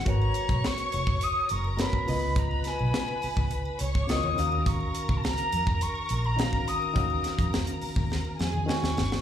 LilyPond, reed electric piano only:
\new Staff \with { instrumentName = "Reed electric piano" } { \time 4/4 \key ees \minor \tempo 4 = 104 <aes ges' bes' ces'' des''>4. r4. <aes ges' bes' ces'' des''>8 <des ces' f' ces'' ees''>8~ | <des ces' f' ces'' ees''>4 r2 <des ces' f' bes' ees''>8 <ees des' ges' f''>8~ | <ees des' ges' f''>4 r2 <ees des' ges' f''>4 | <ees des' ges' f''>4. r4. <ees des' ges' aes''>4 | }